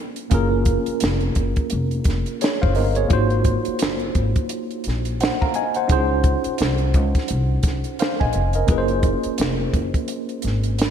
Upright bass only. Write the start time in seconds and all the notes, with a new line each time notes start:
0.32 F#1
0.88 muted upright bass stroke
1.02 F1
1.37 F#1
1.72 F1
2.06 F1
2.64 F#1
2.77 G1
3.11 G#1
3.67 muted upright bass stroke
3.82 F#1
4.16 G#1
4.87 A#1
5.90 C#2
6.46 muted upright bass stroke
6.61 C2
6.95 C#2
7.31 C2
7.64 C2
8.21 A#1
8.35 F1
8.69 F#1
9.26 muted upright bass stroke
9.39 F1
9.74 F#1
10.44 G#1